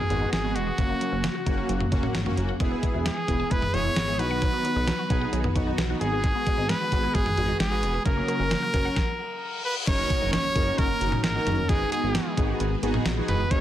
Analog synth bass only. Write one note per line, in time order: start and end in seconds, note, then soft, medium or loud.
0.10 0.26 G#1 loud
0.33 0.57 G#1 loud
0.56 0.71 E1 loud
0.78 0.94 F#1 loud
1.12 1.28 F#1 medium
1.46 1.62 F#1 loud
1.69 1.85 F#1 loud
1.92 2.08 F#1 loud
2.15 2.31 G#1 loud
2.37 2.53 F#1 medium
2.60 2.76 E1 loud
2.94 3.10 E1 loud
3.28 3.44 E1 medium
3.51 3.67 E1 loud
3.74 3.90 E1 loud
3.96 4.21 G#1 loud
4.19 4.51 B1 loud
4.76 4.92 B1 loud
5.10 5.26 B1 loud
5.33 5.49 B1 loud
5.56 5.71 B1 loud
5.78 5.94 B1 medium
6.01 6.33 G#1 loud
6.58 6.74 G#1 loud
6.92 7.08 G#1 loud
7.15 7.31 G#1 loud
7.37 7.53 G#1 loud
7.60 7.84 G#1 loud
7.83 7.99 E1 loud
8.06 8.21 F#1 loud
8.40 8.56 F#1 loud
8.74 8.90 F#1 loud
9.87 10.03 F#1 loud
10.21 10.37 F#1 loud
10.56 10.71 F#1 loud
10.79 10.94 F#1 loud
11.01 11.17 F#1 medium
11.24 11.40 G#1 medium
11.46 11.62 F#1 medium
11.69 11.85 G#1 loud
12.03 12.19 G#1 loud
12.37 12.53 G#1 loud
12.60 12.76 G#1 loud
12.83 12.99 G#1 medium
13.06 13.21 A#1 loud
13.28 13.44 E1 loud
13.51 13.61 F#1 loud